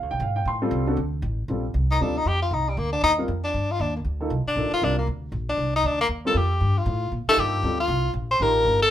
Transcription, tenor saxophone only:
1.91 2.04 D#4 medium
2.02 2.19 D4 medium
2.18 2.29 D#4 medium
2.28 2.42 G4 medium
2.42 2.55 F4 medium
2.54 2.70 D#4 medium
2.69 2.80 G3 medium
2.78 2.92 A#3 medium
2.93 3.02 D4 medium
3.04 3.13 D#4 loud
3.44 3.73 D4 medium
3.71 3.82 F4 loud
3.81 3.96 D4 medium
3.97 4.01 A#3 medium
4.48 4.71 D4 medium
4.74 4.85 F4 loud
4.84 4.98 D4 medium
4.99 5.08 A#3 medium
5.49 5.73 D4 medium
5.76 5.88 D#4 loud
5.87 6.01 D4 medium
6.01 6.07 A#3 loud
6.27 6.39 A4 medium
6.37 6.79 G4 medium
6.78 7.13 F4 medium
7.29 7.41 A4 loud
7.40 7.80 G4 medium
7.80 8.13 F4 loud
8.31 8.44 C5 loud
8.42 8.82 A#4 loud
8.83 8.90 A4 loud

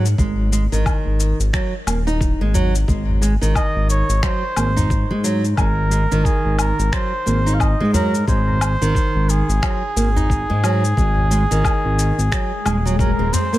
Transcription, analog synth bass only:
0.00 0.15 G#2 medium
0.18 0.67 G#1 loud
0.72 0.84 G#1 medium
1.06 1.33 G#1 medium
1.39 1.51 G#1 loud
1.87 2.35 D#1 medium
2.40 2.84 G#1 medium
2.88 3.37 G#1 loud
3.42 3.53 G#1 medium
3.75 4.03 G#1 medium
4.09 4.21 G#1 loud
4.56 5.05 G#1 loud
5.10 5.54 G#2 medium
5.58 6.06 G#1 loud
6.12 6.23 G#1 medium
6.45 6.72 G#1 medium
6.79 6.90 G#1 loud
7.27 7.75 G#1 loud
7.80 8.24 G#2 medium
8.27 8.76 G#1 loud
8.81 8.93 G#1 medium
9.15 9.42 G#1 medium
9.48 9.60 G#1 loud
9.96 10.45 G#1 loud
10.50 10.94 G#2 medium
10.97 11.46 G#1 loud
11.51 11.62 G#1 medium
11.85 12.12 G#1 medium
12.18 12.30 G#1 medium
12.65 13.14 D#1 loud
13.19 13.31 D#1 loud

